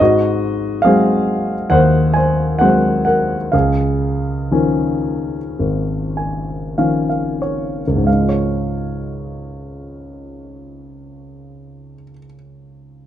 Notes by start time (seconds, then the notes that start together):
0.00 G#2 F#4 D#5
0.82 F#3 G#3 C4 G#4 F5
1.70 D#2 C5 F#5
2.14 C5 G#5
2.59 F#3 G#3 C4 C5 F#5
3.05 A#4 F#5
3.52 C#2 G#4 F5
4.51 D#3 F3 C#4
5.59 G#1
6.17 G#5
6.78 D#3 F3 C#4 F5
7.09 F5
7.42 C#5
7.88 C#2
7.96 G#2
8.04 G#3 F5
8.12 D#4
8.21 F4
8.29 C#5